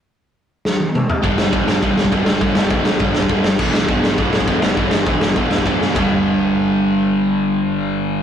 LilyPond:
<<
  \new Staff \with { instrumentName = "Distorted electric guitar" } { \clef bass \time 4/4 \key g \major \tempo 4 = 204 r1 | <g, d g>4 <g, d g>4 <g, d g>4 <g, d g>4 | <g, d g>4 <g, d g>4 <g, d g>4 <g, d g>8 r8 | <e, b, e>4 <e, b, e>4 <e, b, e>4 <e, b, e>4 |
<e, b, e>4 <e, b, e>4 <e, b, e>4 <e, b, e>4 | <g, d g>1~ | <g, d g>1 | }
  \new Staff \with { instrumentName = "Overdriven electric guitar" } { \clef bass \time 4/4 \key g \major r1 | <g, d g>4 <g, d g>4 <g, d g>4 <g, d g>4 | <g, d g>4 <g, d g>4 <g, d g>4 <g, d g>8 r8 | <e, b, e>4 <e, b, e>4 <e, b, e>4 <e, b, e>4 |
<e, b, e>4 <e, b, e>4 <e, b, e>4 <e, b, e>4 | <g, d g>1~ | <g, d g>1 | }
  \new Staff \with { instrumentName = "Picked electric bass" } { \clef bass \time 4/4 \key g \major r1 | g,,4 g,,8 g,,8 g,,8 b,,8 d,8 g,,8 | g,,8 g,,8 g,,8 g,,8 g,,8 e,,8 d,8 g,,8 | g,,4 g,,8 g,,8 g,,8 a,,8 d,8 g,,8 |
g,,8 g,,8 g,,8 g,,8 g,,8 e,,8 d,8 g,8 | g,,1~ | g,,1 | }
  \new DrumStaff \with { instrumentName = "Drums" } \drummode { \time 4/4 r4 r4 sn8 tommh8 toml8 tomfh8 | <bd cymr>8 sn8 <bd cymr>8 sn8 <bd cymr>8 sn16 bd16 <bd cymr>8 sn8 | <bd cymr>8 sn8 <bd cymr>8 sn8 <bd cymr>8 sn16 bd16 <bd cymr>8 sn8 | <cymc bd>8 sn8 <bd cymr>8 sn8 <bd cymr>8 sn16 bd16 <bd cymr>8 sn8 |
<bd cymr>8 sn8 <bd cymr>8 sn8 <bd cymr>8 sn16 bd16 <bd cymr>8 sn8 | <bd rb tomfh>4 r4 r4 r4 | r4 r4 r4 r4 | }
>>